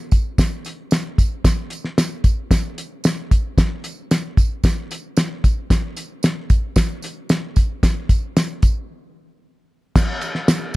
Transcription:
0.11 kick medium
0.11 closed hi-hat medium
0.11 tambourine medium
0.38 kick medium
0.38 snare loud
0.38 closed hi-hat medium
0.38 tambourine medium
0.65 closed hi-hat medium
0.65 tambourine soft
0.91 snare loud
0.91 closed hi-hat medium
0.91 tambourine medium
1.18 kick medium
1.18 closed hi-hat medium
1.18 tambourine medium
1.44 kick loud
1.44 snare loud
1.44 closed hi-hat medium
1.44 tambourine medium
1.70 closed hi-hat medium
1.70 tambourine medium
1.84 snare soft
1.98 snare loud
1.98 closed hi-hat medium
1.98 tambourine medium
2.24 kick medium
2.24 closed hi-hat medium
2.24 tambourine medium
2.51 kick medium
2.51 snare loud
2.51 closed hi-hat medium
2.51 tambourine loud
2.78 closed hi-hat medium
2.78 tambourine medium
3.04 snare loud
3.04 closed hi-hat medium
3.04 tambourine medium
3.31 kick medium
3.31 closed hi-hat medium
3.31 tambourine medium
3.58 kick medium
3.58 snare loud
3.58 closed hi-hat medium
3.58 tambourine medium
3.84 closed hi-hat medium
3.84 tambourine medium
4.11 snare medium
4.11 closed hi-hat medium
4.11 tambourine medium
4.37 kick loud
4.37 closed hi-hat medium
4.37 tambourine medium
4.64 kick medium
4.64 snare loud
4.64 closed hi-hat medium
4.64 tambourine medium
4.91 closed hi-hat medium
4.91 tambourine soft
5.17 snare loud
5.17 closed hi-hat medium
5.17 tambourine medium
5.44 kick medium
5.44 closed hi-hat medium
5.44 tambourine medium
5.70 kick loud
5.70 snare medium
5.70 closed hi-hat medium
5.70 tambourine medium
5.97 closed hi-hat medium
5.97 tambourine medium
6.23 snare loud
6.23 closed hi-hat medium
6.23 tambourine loud
6.50 kick loud
6.50 closed hi-hat medium
6.50 tambourine medium
6.76 kick medium
6.76 snare loud
6.76 closed hi-hat medium
6.76 tambourine medium
7.02 closed hi-hat medium
7.02 tambourine medium
7.29 snare loud
7.29 closed hi-hat medium
7.29 tambourine medium
7.56 kick medium
7.56 closed hi-hat medium
7.56 tambourine medium
7.83 kick loud
7.83 snare loud
7.83 closed hi-hat medium
7.83 tambourine medium
8.09 kick medium
8.09 closed hi-hat medium
8.09 tambourine medium
8.37 snare loud
8.37 closed hi-hat medium
8.37 tambourine medium
8.62 kick loud
8.62 closed hi-hat medium
8.62 tambourine medium
9.95 kick loud
9.95 snare loud
9.95 crash loud
9.95 tambourine medium
10.21 ride medium
10.21 tambourine medium
10.35 snare soft
10.48 snare loud
10.48 ride medium
10.48 tambourine medium

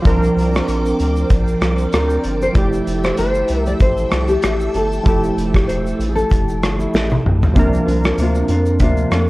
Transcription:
0.00 2.50 F3 medium
0.00 2.51 C5 medium
0.00 2.52 D5 medium
0.00 2.51 G5 medium
0.00 2.51 D6 medium
0.04 0.30 C2 loud
0.04 2.51 C4 medium
0.04 2.52 D4 medium
0.04 2.52 A#4 loud
0.04 kick loud
0.04 closed hi-hat medium
0.04 shaker medium
0.22 shaker soft
0.22 shaker medium
0.36 0.62 C2 loud
0.36 closed hi-hat medium
0.36 shaker soft
0.39 shaker medium
0.53 shaker soft
0.55 cross-stick medium
0.55 shaker medium
0.68 0.93 A#1 medium
0.68 closed hi-hat medium
0.68 shaker medium
0.85 shaker soft
0.85 shaker medium
0.99 1.25 D2 loud
0.99 closed hi-hat soft
0.99 shaker soft
1.16 shaker soft
1.30 1.55 A#1 loud
1.30 kick loud
1.30 closed hi-hat medium
1.30 shaker medium
1.47 shaker medium
1.47 shaker soft
1.61 1.86 C2 loud
1.61 cross-stick medium
1.61 closed hi-hat medium
1.61 shaker medium
1.78 shaker soft
1.80 shaker soft
1.92 2.18 D2 medium
1.92 2.42 A#4 loud
1.92 cross-stick medium
1.92 closed hi-hat medium
1.92 shaker medium
2.09 shaker medium
2.23 2.49 G1 medium
2.23 closed hi-hat soft
2.23 shaker soft
2.42 2.47 C5 loud
2.42 shaker medium
2.53 2.80 F1 loud
2.53 5.00 F3 medium
2.53 5.01 A3 medium
2.53 5.02 E4 medium
2.53 7.52 A4 medium
2.53 3.04 D5 loud
2.53 7.52 E5 medium
2.53 7.52 G5 medium
2.53 7.52 E6 medium
2.53 kick loud
2.53 closed hi-hat medium
2.53 shaker medium
2.58 5.03 G4 medium
2.72 shaker soft
2.72 shaker medium
2.87 3.12 F1 loud
2.87 closed hi-hat medium
2.87 shaker medium
3.03 3.17 C5 medium
3.03 cross-stick medium
3.03 shaker soft
3.03 shaker medium
3.17 3.43 G1 loud
3.17 3.67 C5 loud
3.17 closed hi-hat medium
3.17 shaker medium
3.34 shaker medium
3.34 shaker soft
3.48 3.75 C2 medium
3.48 closed hi-hat soft
3.48 shaker soft
3.66 3.72 D5 loud
3.66 shaker soft
3.79 4.05 A1 loud
3.79 4.31 C5 loud
3.79 kick loud
3.79 closed hi-hat medium
3.79 shaker medium
3.97 shaker soft
4.11 4.37 C2 loud
4.11 cross-stick medium
4.11 closed hi-hat soft
4.11 shaker soft
4.28 4.75 G4 loud
4.28 shaker medium
4.30 shaker soft
4.42 4.68 A1 medium
4.42 cross-stick medium
4.42 closed hi-hat medium
4.42 shaker medium
4.44 shaker medium
4.60 shaker medium
4.74 4.99 G1 medium
4.74 5.05 A4 loud
4.74 closed hi-hat soft
4.74 shaker soft
4.92 shaker medium
4.92 shaker soft
5.03 5.31 F1 loud
5.03 7.51 F3 medium
5.03 7.51 A3 medium
5.03 7.52 E4 medium
5.03 5.51 A4 medium
5.03 kick loud
5.03 closed hi-hat medium
5.03 shaker medium
5.08 7.53 G4 medium
5.23 shaker medium
5.23 shaker soft
5.37 5.62 F1 loud
5.37 closed hi-hat medium
5.37 shaker medium
5.37 shaker soft
5.54 5.69 G4 medium
5.54 kick medium
5.54 cross-stick medium
5.54 shaker medium
5.68 5.93 E1 loud
5.68 6.08 C5 loud
5.68 closed hi-hat medium
5.68 shaker medium
5.86 shaker soft
5.86 shaker medium
5.99 6.24 A1 loud
5.99 closed hi-hat soft
5.99 shaker medium
5.99 shaker soft
6.09 6.15 G#4 medium
6.16 6.78 A4 loud
6.16 shaker soft
6.18 shaker medium
6.30 6.63 F1 loud
6.30 kick medium
6.30 closed hi-hat medium
6.30 shaker medium
6.32 shaker medium
6.48 shaker soft
6.48 shaker medium
6.61 6.87 G1 loud
6.61 cross-stick medium
6.61 closed hi-hat soft
6.61 shaker medium
6.79 7.38 E4 medium
6.79 shaker soft
6.94 7.19 A1 medium
6.94 snare medium
6.94 shaker medium
7.10 high tom medium
7.10 shaker medium
7.25 7.50 A#1 loud
7.25 mid tom medium
7.42 floor tom loud
7.42 shaker soft
7.54 7.81 C2 loud
7.54 7.86 C3 medium
7.54 9.30 F3 medium
7.54 7.87 A#3 medium
7.54 9.30 C4 medium
7.54 7.87 D4 medium
7.54 9.30 D4 medium
7.54 7.84 F4 medium
7.54 kick loud
7.54 closed hi-hat medium
7.54 shaker medium
7.59 9.30 A#4 medium
7.73 shaker soft
7.73 shaker medium
7.86 8.12 C2 loud
7.86 8.18 A#3 soft
7.86 8.19 D4 medium
7.86 8.18 F4 medium
7.86 closed hi-hat medium
7.86 shaker medium
8.03 cross-stick loud
8.03 shaker soft
8.18 8.43 D2 loud
8.18 8.50 C3 medium
8.18 8.50 A#3 medium
8.18 8.50 D4 medium
8.18 closed hi-hat medium
8.18 shaker medium
8.22 8.48 F4 medium
8.34 shaker soft
8.34 shaker medium
8.48 8.82 F2 loud
8.48 8.81 D4 soft
8.48 8.81 F4 medium
8.48 closed hi-hat soft
8.48 shaker soft
8.53 8.80 A#3 soft
8.66 shaker medium
8.79 9.06 D2 loud
8.79 9.12 C3 medium
8.79 9.12 A#3 medium
8.79 9.12 D4 medium
8.79 kick medium
8.79 closed hi-hat medium
8.79 shaker medium
8.83 9.10 F4 medium
8.97 shaker soft
9.11 9.30 F2 loud
9.11 9.30 A#3 medium
9.11 9.30 D4 medium
9.11 9.30 F4 medium
9.11 cross-stick medium
9.11 closed hi-hat medium
9.11 shaker soft

